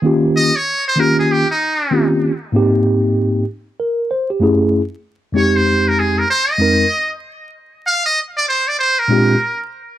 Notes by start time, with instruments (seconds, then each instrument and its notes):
0.02 tine electric piano D#3 A#3 C#4 F4 G4
0.37 muted trumpet D#5
0.56 muted trumpet C#5
0.88 muted trumpet C5
0.96 tine electric piano D#3 A#3 C#4 F4, muted trumpet A#4
1.00 tine electric piano G4
1.19 muted trumpet G#4
1.32 muted trumpet G4
1.51 muted trumpet D#4
1.90 tine electric piano D#3 A#3 C4 C#4 F4 G4
2.52 tine electric piano G#2 A#3 C4 D#4
2.56 tine electric piano G4
3.80 tine electric piano A#4
4.11 tine electric piano C5
4.30 tine electric piano G4
4.40 tine electric piano F#2 A3 C#4 E4 G#4
5.32 tine electric piano F2 G#3 C4 D#4, muted trumpet C#5
5.36 tine electric piano G4
5.56 muted trumpet C5
5.88 muted trumpet A#4
5.99 muted trumpet G#4
6.18 muted trumpet A#4
6.30 muted trumpet C5
6.51 muted trumpet D#5
6.58 tine electric piano F2 G#3 C4 D#4 A#4
7.87 muted trumpet F5
8.06 muted trumpet D#5
8.37 muted trumpet D5
8.49 muted trumpet C5
8.68 muted trumpet D5
8.79 muted trumpet C5
8.99 muted trumpet A#4
9.08 tine electric piano A#2 G#3 C4 D4 F4
9.12 tine electric piano G4